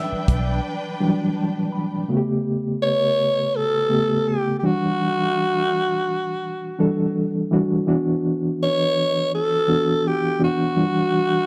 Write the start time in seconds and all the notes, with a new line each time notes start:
Already playing: E3 F#3 G3 D4 B4 E5 G5
0.12 muted fingered electric bass stroke
0.28 B1, kick, closed hi-hat
1.00 E3 F#3 G3 D4 G5
1.37 A5
1.72 B5
2.08 C#3 A3 B3 F#4
2.17 G4
2.82 C#5
3.56 A4
3.89 C#3 A3 B3 G4
4.28 G4
4.59 E3 G4
4.63 G3 D4 F#4
6.79 E3 G3 D4 A4
7.51 E3 G3 D4 F#4
7.87 E3 B3 D4 F#4
8.63 C#5
9.35 A4
9.67 E3 B3 D4 F#4
10.07 G4
10.39 E3 B3 D4 F#4
10.44 F#4
10.76 E3 G3 D4 F4
10.84 F#4